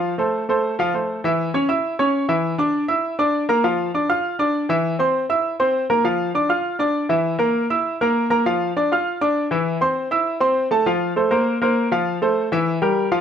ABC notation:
X:1
M:4/4
L:1/8
Q:1/4=199
K:F
V:1 name="Grand piano"
[F,Ff] [A,Ac]2 [A,Ac]2 [F,Ff] [A,Ac]2 | [_F,_F_f]2 [_D_d_d'] [Ff_f']2 [Ddd']2 [F,Ff]- | [_F,_F_f] [Ddd']2 [Eee']2 [Ddd']2 [B,Bb] | [F,Ff]2 [Ddd'] [Fff']2 [Ddd']2 [E,Ee]- |
[E,Ee] [Ccc']2 [Eee']2 [Ccc']2 [B,Bb] | [F,Ff]2 [Ddd'] [Fff']2 [Ddd']2 [E,Ee]- | [E,Ee] [B,Bb]2 [Eee']2 [B,Bb]2 [B,Bb] | [F,Ff]2 [Ddd'] [Fff']2 [Ddd']2 [E,Ee]- |
[E,Ee] [Ccc']2 [Eee']2 [Ccc']2 [A,Aa] | [F,Ff]2 [A,Ac] [B,Bc]2 [B,Bc]2 [F,Ff]- | [F,Ff] [A,Ac]2 [E,Ee]2 [G,GB]2 [F,Ff] |]